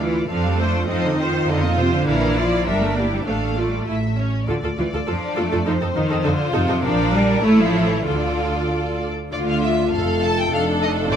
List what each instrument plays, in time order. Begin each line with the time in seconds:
Already playing: double bass section D2
0.00 cello section E3, viola section F4, violin section D5
0.29 double bass section F2, cello section F3, viola section C4 A4, violin section D4 F5
0.45 cello section G3
0.59 cello section A3, viola section F4 C5, violin section C5
0.89 double bass section F2, cello section F3, violin section C4 D#5, viola section D#4 A4
1.04 cello section D3
1.18 cello section D#3, viola section F4 C5, violin section C5
1.48 double bass section F2, cello section D3, viola section D#4 A4, violin section F4 D#5
1.64 cello section A#2
1.78 cello section C3, viola section F4 C5, violin section C5
1.94 cello section D3
2.07 double bass section A#1, cello section E3, viola section D4 A#4, violin section E4 F5
2.36 cello section F3, viola section F4 D5, violin section D5
2.66 double bass section G1, cello section G3, violin section D4 E5, viola section D4 A#4
2.83 cello section A3
2.96 cello section A#3, viola section E4 G4, violin section D5
3.13 cello section G3
3.26 double bass section A1, violin section A3 F5, cello section A3, viola section D4 A4
3.51 cello section A#3
3.57 cello section A3, viola section F4, violin section D5
3.70 cello section G3
3.80 cello section A3
3.86 double bass section A1, viola section E4, violin section E5
4.17 viola section C#4, violin section C#5
4.48 double bass section D2, cello section D3, viola section F4 A4, violin section D5
4.63 double bass section D2, viola section F4 A4
4.78 double bass section D2, cello section E3, viola section F4
4.93 double bass section D2, viola section F4 A4
5.07 double bass section F2, cello section F3, violin section D4, viola section F4 A4
5.37 double bass section F2, cello section A3, viola section F4 A4
5.52 double bass section F2, viola section F4 A4
5.66 double bass section F2, cello section F3, violin section C4 C5, viola section D#4 A4
5.82 double bass section F2, viola section D#4 A4
5.96 double bass section F2, cello section D#3, viola section D#4 F4
6.10 double bass section F2, viola section D#4 A4
6.24 double bass section F2, cello section D3, viola section D#4 A4, violin section F4
6.53 double bass section F2, cello section C3, viola section D#4 A4
6.68 double bass section F2, viola section D#4 A4
6.83 double bass section A#1, cello section F3, violin section D4 D5, viola section D4 A#4
7.13 cello section G3
7.43 double bass section A1, cello section A3, viola section E4 A4, violin section E4 C#5
7.60 cello section F3
7.91 cello section E3
8.06 double bass section D2, cello section D3, violin section F4 D5, viola section F4 A4
9.32 double bass section D2, cello section D3, french horn section A3 F4, viola section F4, violin section F4 D5
9.47 violin section F5
9.61 violin section E5
9.92 double bass section F1, cello section F2, viola section A4, violin section A4 F5
10.22 violin section A5
10.38 violin section G5
10.51 double bass section F1, cello section F2, viola section D4 A4, french horn section D#4, violin section F5
10.82 violin section D#5
11.10 double bass section A1, cello section A2, viola section C4 C5, violin section F4 D5